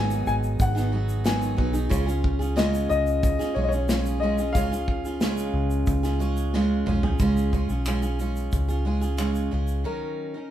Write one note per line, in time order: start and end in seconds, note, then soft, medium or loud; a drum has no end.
0.00 0.23 G#1 loud
0.00 0.75 G#2 medium
0.00 0.75 D#3 medium
0.00 0.76 F#3 medium
0.00 0.76 B3 medium
0.00 1.86 B3 medium
0.00 0.74 D#4 medium
0.00 1.87 D#4 medium
0.00 1.87 F#4 medium
0.00 0.74 G#4 loud
0.00 1.88 G#4 medium
0.00 1.88 D#5 medium
0.00 0.24 G#5 medium
0.10 shaker medium
0.27 0.57 G#1 medium
0.27 0.35 G#5 loud
0.27 shaker soft
0.43 shaker soft
0.60 1.54 G#1 loud
0.60 1.28 F#5 medium
0.60 kick loud
0.60 shaker medium
0.75 0.91 F#3 medium
0.75 0.92 B3 soft
0.75 0.92 D#4 medium
0.75 0.92 G#4 medium
0.75 snare soft
0.75 shaker soft
0.92 1.24 F#3 medium
0.92 1.24 B3 medium
0.92 1.25 D#4 medium
0.92 1.25 G#4 medium
1.09 shaker medium
1.24 1.58 G#2 medium
1.24 1.58 D#3 medium
1.24 1.55 F#3 medium
1.24 1.56 B3 medium
1.24 1.57 D#4 medium
1.24 1.58 G#4 medium
1.24 1.88 G#5 medium
1.24 snare loud
1.24 shaker medium
1.42 shaker soft
1.57 1.89 B1 medium
1.57 1.74 F#3 medium
1.57 1.74 B3 medium
1.57 1.72 D#4 medium
1.57 1.72 G#4 medium
1.57 kick medium
1.73 1.89 F#3 soft
1.73 1.90 B3 soft
1.73 1.90 D#4 medium
1.73 1.90 G#4 medium
1.73 shaker medium
1.89 2.86 C#2 loud
1.89 2.07 C#3 medium
1.89 2.07 G#3 medium
1.89 2.07 C#4 loud
1.89 4.50 F4 medium
1.89 2.06 F4 medium
1.89 4.51 G#4 medium
1.89 2.05 G#4 loud
1.89 4.52 C#5 medium
1.89 kick loud
1.89 shaker medium
2.06 2.41 C#4 medium
2.06 2.39 F4 medium
2.06 2.38 G#4 medium
2.06 shaker medium
2.24 kick medium
2.39 2.55 C#4 soft
2.39 2.56 F4 soft
2.39 2.56 G#4 medium
2.39 shaker soft
2.56 3.39 C#3 medium
2.56 3.55 G#3 medium
2.56 3.41 C#4 medium
2.56 3.40 F4 medium
2.56 3.39 G#4 medium
2.56 2.88 D#5 medium
2.56 snare loud
2.56 shaker medium
2.74 shaker medium
2.89 3.36 C#2 loud
2.89 3.58 D#5 loud
2.89 shaker soft
3.07 shaker soft
3.23 kick loud
3.23 shaker medium
3.39 3.55 C#4 soft
3.39 3.56 F4 medium
3.39 3.56 G#4 medium
3.39 snare soft
3.39 shaker soft
3.54 4.55 B1 medium
3.54 3.72 G#3 medium
3.54 3.73 C#4 medium
3.54 3.72 F4 medium
3.54 3.71 G#4 medium
3.54 3.62 C#5 medium
3.63 3.70 D#5 medium
3.68 3.89 G#4 soft
3.68 4.23 C#5 medium
3.68 shaker medium
3.73 3.89 C#4 soft
3.73 3.89 F4 soft
3.89 4.22 C#3 medium
3.89 4.21 G#3 medium
3.89 4.22 C#4 medium
3.89 4.22 F4 medium
3.89 4.23 G#4 medium
3.89 snare loud
3.89 shaker medium
4.06 shaker soft
4.20 4.38 G#3 medium
4.20 4.39 C#4 medium
4.20 4.39 F4 medium
4.20 4.55 D#5 medium
4.24 4.38 G#4 medium
4.38 4.55 C#4 soft
4.38 4.55 F4 soft
4.38 4.55 G#4 medium
4.38 shaker medium
4.53 5.50 C#2 loud
4.53 4.72 C#3 medium
4.53 4.72 G#3 medium
4.53 4.72 C#4 medium
4.53 7.15 F4 medium
4.53 7.16 G#4 medium
4.53 6.81 F5 loud
4.53 kick loud
4.53 shaker medium
4.57 4.72 F4 medium
4.57 4.70 G#4 medium
4.57 7.17 C#5 medium
4.72 5.06 C#4 soft
4.72 5.05 F4 medium
4.72 5.04 G#4 soft
4.72 shaker medium
4.88 kick medium
5.05 5.21 C#4 soft
5.05 5.21 F4 soft
5.05 5.21 G#4 medium
5.05 shaker medium
5.21 6.04 C#3 medium
5.21 6.19 G#3 medium
5.21 6.05 C#4 medium
5.21 6.04 F4 medium
5.21 6.03 G#4 medium
5.21 snare loud
5.21 shaker medium
5.37 shaker medium
5.54 5.84 C#2 medium
5.70 shaker soft
5.87 6.83 C#2 medium
5.87 kick loud
5.87 shaker medium
6.03 6.19 C#4 medium
6.03 6.20 F4 medium
6.03 6.20 G#4 medium
6.03 snare soft
6.03 shaker soft
6.19 6.53 G#3 medium
6.19 6.53 C#4 medium
6.19 6.54 F4 medium
6.19 6.54 G#4 medium
6.19 shaker soft
6.37 shaker soft
6.54 6.87 C#3 medium
6.54 6.85 G#3 medium
6.54 6.87 C#4 medium
6.54 6.87 F4 medium
6.54 6.88 G#4 medium
6.54 snare medium
6.86 7.17 B1 medium
6.86 7.03 G#3 medium
6.86 7.04 C#4 medium
6.86 7.03 F4 medium
6.86 7.02 G#4 medium
6.86 mid tom loud
7.03 7.20 C#4 soft
7.03 7.20 F4 medium
7.03 7.20 G#4 medium
7.03 floor tom loud
7.19 7.65 C#2 loud
7.19 7.53 C#3 medium
7.19 7.51 G#3 medium
7.19 7.53 C#4 medium
7.19 7.53 F4 loud
7.19 7.54 G#4 loud
7.19 kick loud
7.19 shaker medium
7.37 shaker medium
7.53 7.69 G#3 medium
7.53 7.70 C#4 medium
7.53 7.69 F4 medium
7.53 7.68 G#4 medium
7.53 kick medium
7.53 shaker soft
7.69 8.49 B1 medium
7.69 7.86 C#4 soft
7.69 7.86 F4 medium
7.69 7.86 G#4 medium
7.69 shaker soft
7.86 8.03 C#3 medium
7.86 8.03 G#3 medium
7.86 8.03 C#4 medium
7.86 8.02 F4 loud
7.86 8.01 G#4 medium
7.86 finger snap loud
7.86 shaker medium
8.02 8.19 C#4 soft
8.02 8.19 F4 medium
8.02 8.19 G#4 medium
8.02 shaker medium
8.19 8.69 G#3 medium
8.19 8.69 C#4 medium
8.19 8.69 F4 medium
8.19 8.67 G#4 medium
8.19 shaker soft
8.36 shaker soft
8.52 9.48 C#2 medium
8.52 kick medium
8.52 shaker medium
8.68 8.85 C#4 soft
8.68 8.85 F4 medium
8.68 8.85 G#4 medium
8.68 shaker soft
8.85 9.02 G#3 medium
8.85 9.02 C#4 medium
8.85 9.02 F4 medium
8.85 9.00 G#4 medium
9.01 9.18 C#4 soft
9.01 9.18 F4 soft
9.01 9.18 G#4 medium
9.01 shaker soft
9.17 9.51 C#3 medium
9.17 9.50 G#3 medium
9.17 9.50 C#4 medium
9.17 9.51 F4 medium
9.17 9.52 G#4 medium
9.17 finger snap loud
9.17 shaker medium
9.35 shaker soft
9.51 9.83 C#2 medium
9.51 9.84 G#3 medium
9.51 9.84 C#4 medium
9.51 9.85 F4 medium
9.51 9.86 G#4 medium
9.68 shaker soft
9.84 10.35 D#3 medium
9.84 10.35 F#3 medium
9.84 10.35 C#4 medium
9.84 10.34 D#4 medium
9.84 10.51 A#4 medium
9.84 10.33 A#4 medium
10.34 10.51 C#4 soft
10.34 10.51 D#4 soft
10.34 10.51 A#4 soft